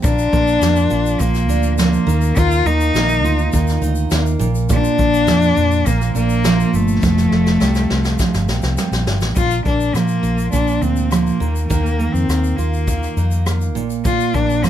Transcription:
0.02 A#1 A#2 D4 F4, kick, shaker
0.18 shaker
0.33 A#1 A#3, kick, shaker
0.47 shaker
0.61 F2 F3, snare, shaker
0.76 shaker
0.90 A#1 F4, shaker
1.06 shaker
1.19 A#1 A#2 A#3, kick, shaker
1.34 snare, shaker
1.48 D2 D4, shaker
1.63 shaker
1.78 F3 A#3, snare, shaker
1.93 shaker
2.07 D#2 D#3, shaker
2.21 shaker
2.24 shaker
2.36 D#2 D#3 F4, kick, shaker
2.51 shaker
2.65 D#2 A#3 D#4, shaker
2.80 shaker
2.94 A#1 A#3, snare, shaker
3.09 shaker
3.23 D2 F4, shaker
3.38 shaker
3.53 D#2 D#3, kick, shaker
3.54 shaker
3.67 snare, shaker
3.82 D2 D#4, shaker
3.95 shaker
4.11 D#2 A#3, snare, shaker
4.26 shaker
4.39 A#1 A#2, shaker
4.55 shaker
4.69 A#2 D4 F4, kick, shaker
4.84 shaker
4.99 A#1, kick, shaker
5.14 shaker
5.27 F2 F3, snare, shaker
5.42 shaker
5.56 F2 F4, shaker
5.71 shaker
5.86 A#1 A#2 A#3, kick, shaker
6.01 snare, shaker
6.15 A#1 A#3 D4, shaker
6.29 shaker
6.44 F3, snare, shaker
6.60 shaker
6.74 G1 A3, shaker
6.88 shaker
7.03 F1 F2 F4, kick, snare, shaker
7.18 snare, shaker
7.32 F1 A3, snare
7.46 snare, shaker
7.60 C2 G3, snare, shaker
7.75 snare, shaker
7.90 C2 F4, snare
8.05 snare, shaker
8.19 F2, kick, snare, shaker
8.34 G1, snare, shaker
8.48 A#1 C4, snare, shaker
8.62 C2, snare, shaker
8.77 G3, snare, shaker
8.92 A#1, snare, shaker
9.07 G1, snare, shaker
9.21 A1, snare, shaker
9.35 A#1 A#2 F4, kick, shaker
9.51 shaker
9.65 A#1 A#3 D4, kick, shaker
9.80 shaker
9.94 A#2 F3 A#3, cross-stick, shaker
10.08 shaker
10.23 A#1 F4, shaker
10.38 shaker
10.39 shaker
10.52 A#1 A#2 D4, kick, shaker
10.67 shaker
10.81 D2 C4 D4, shaker
10.96 shaker
11.10 F3 A#3, cross-stick, shaker
11.27 shaker
11.40 D#2 D#3, shaker
11.56 shaker
11.67 D#2 D#3 A#3, kick, shaker
11.86 shaker
11.99 A#3, shaker
12.12 F2 C4, shaker
12.28 D#2 A#3, cross-stick, shaker
12.44 shaker
12.56 D#2 A#3 F4, shaker
12.74 shaker
12.88 D#3, kick, shaker
13.03 cross-stick, shaker
13.17 F2 D#4, shaker
13.31 shaker
13.46 A#3, cross-stick, shaker
13.61 shaker
13.75 A#1 A#2, shaker
13.90 shaker
14.05 A#2 F4, kick, shaker
14.20 shaker
14.34 A#1 A#3 D4, kick, shaker
14.50 shaker
14.64 A#2 F3 A#3, cross-stick, shaker

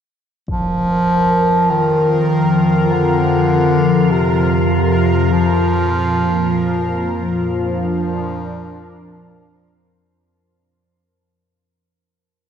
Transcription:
0.48 F2 F3 A#4, impact
1.70 D#3
2.91 D3
4.11 C3
4.71 C3
5.29 A#2 F3
6.67 F3
7.40 D4 A#4
7.68 F3

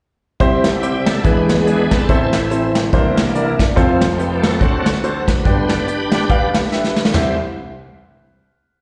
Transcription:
0.40 C2 C3 G3 C4 E4 G4 C5, kick, closed hi-hat
0.64 snare, closed hi-hat
0.82 C4 E4 G4 C5, closed hi-hat
1.06 A4, snare, closed hi-hat
1.23 E2 E3 G#3 D4 E4 G#4 B4, kick, closed hi-hat
1.42 G4
1.49 B3 D4 G#4, snare, closed hi-hat
1.66 D4 E4 G#4 B4, closed hi-hat
1.91 C4 E4 A4, kick, snare, closed hi-hat
2.09 A1 A2 E3 C4 E4 A4 C5, kick, closed hi-hat
2.33 snare, closed hi-hat
2.51 C4 E4 A4 C5, closed hi-hat
2.75 snare, closed hi-hat
2.93 C2 C3 E3 A#3 D4 E4 A#4 C5, kick, closed hi-hat
3.17 snare, closed hi-hat
3.35 D4 E4 A#4 D5, closed hi-hat
3.59 kick, snare, closed hi-hat
3.76 F1 F2 F3 A3 C4 F4 A4 C5, kick, closed hi-hat
4.01 snare, closed hi-hat
4.17 C4 F4 G4 A4 B4, closed hi-hat
4.42 C4 F#4 A4, snare, closed hi-hat
4.59 D2 D3 F#3 C4 D4 F#4 A4 C5, kick, closed hi-hat
4.86 snare, closed hi-hat
5.04 D4 F#4 A4 C5, closed hi-hat
5.26 B4, kick, snare, closed hi-hat
5.44 G1 G2 D3 B3 D4 G4 B4 C5 D5, kick, closed hi-hat
5.68 D4 G4 B4, snare, closed hi-hat
5.87 D4 G4 B4 D5, closed hi-hat
6.12 snare, closed hi-hat
6.30 D4 G4 B4 F5, kick, closed hi-hat
6.54 snare, closed hi-hat
6.72 D4 G4 B4 E5, snare
6.84 snare
6.96 snare
7.05 snare
7.14 C2 E3 C4 E4 G4 C5 E5, snare, floor tom, splash

